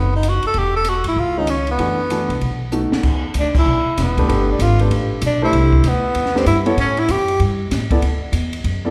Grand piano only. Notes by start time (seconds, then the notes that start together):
1.37 D#3 G#3 C#4 F4
1.79 E3 A3 D4 F#4
2.10 E3 A3 D4 F#4
2.72 A3 B3 D#4 F#4
4.18 A3 D4 G4 B4
4.29 A3 D4 G4 B4
4.81 A3 D4 G4 B4
5.42 A3 D4 G4 C5
6.35 A3 D4 G4 B4
6.66 B3 E4 A4 C#5
7.91 B3 E4 A4 D5
8.85 B3 E4 A4 D5